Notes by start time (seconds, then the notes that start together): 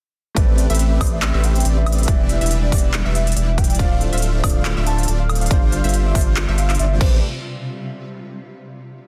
0.35 A1 C3 G3 A3 C4 D4 G4 B4 D5 E5, kick, closed hi-hat
0.48 B4
0.58 G4, closed hi-hat
0.70 A1 A3 C4 G4 B4 C5 E5, closed hi-hat
0.75 closed hi-hat
0.79 G4, closed hi-hat
0.91 B4
1.00 A1 A3 C4 G4 B4 C5 D5, kick, open hi-hat, high woodblock
1.07 closed hi-hat
1.13 C5 E5
1.22 G4, clap, closed hi-hat
1.34 A1 A3 C4 G4 B4 E5
1.44 G4 G5, closed hi-hat
1.55 C5, closed hi-hat
1.60 closed hi-hat
1.65 A1 A3 C4 G4 B4 D5, closed hi-hat
1.77 B4 E5
1.86 G4, closed hi-hat, high woodblock
1.92 closed hi-hat
1.98 C5 E5, closed hi-hat
2.03 E3, closed hi-hat
2.07 E1 D3 G3 B3 D4 E4 G4 B4 D5, kick, closed hi-hat
2.20 D5
2.29 G4 E5, closed hi-hat
2.41 E1 G3 D4 E4 B4 E5, closed hi-hat
2.46 closed hi-hat
2.51 G4, closed hi-hat
2.63 D5
2.71 E1 E3 G3 B3 E4 G4 B4 D5, kick, open hi-hat
2.78 closed hi-hat
2.84 E5
2.94 clap, closed hi-hat
3.05 E1 G3 D4 E4 B4 D5 E5
3.15 G4 E5, closed hi-hat
3.27 E5, closed hi-hat
3.32 closed hi-hat
3.36 E1 G3 D4 E4 G4 B4 D5 E5, closed hi-hat
3.48 D5
3.58 G4 G5, kick, closed hi-hat
3.64 closed hi-hat
3.70 E5, closed hi-hat
3.75 D3 C4, closed hi-hat
3.79 D1 D3 A3 C4 D4 F4 A4 C5 D5 F5, kick, closed hi-hat
3.91 D5
4.01 A4, closed hi-hat
4.13 D1 A3 D4 F4 C5 E5 F5, closed hi-hat
4.18 closed hi-hat
4.22 A4, closed hi-hat
4.34 D5
4.43 D1 D3 C4 F4 D5, kick, open hi-hat, high woodblock
4.50 closed hi-hat
4.56 F5
4.65 A4, clap, closed hi-hat
4.77 D1 A3 D4 F4 C5 D5 E5
4.87 A4 A5, closed hi-hat
4.98 F5, closed hi-hat
5.03 closed hi-hat
5.08 D1 A3 D4 F4 A4 C5 D5, closed hi-hat
5.20 D5 F5
5.29 A4, closed hi-hat, high woodblock
5.35 closed hi-hat
5.41 F5, closed hi-hat
5.46 G3, closed hi-hat
5.50 G1 C3 G3 D4 F4 G4 C5 D5, kick, closed hi-hat
5.63 D5
5.72 G4 F5, closed hi-hat
5.84 G1 G3 D4 F4 C5 E5 F5, closed hi-hat
5.89 closed hi-hat
5.94 G4, closed hi-hat
6.05 D5 E5
6.14 G1 G3 D4 F4 C5 D5, kick, open hi-hat
6.21 closed hi-hat
6.27 F5
6.37 clap, closed hi-hat
6.48 G1 G3 D4 F4 C5 D5 E5
6.58 G4 F5, closed hi-hat
6.70 F5, clap, closed hi-hat
6.75 closed hi-hat
6.79 G1 G3 D4 F4 G4 C5 D5 E5, closed hi-hat
6.91 D5
6.98 A1 A3 C4 G4 B4 C5 D5, kick, crash
7.02 C5 D5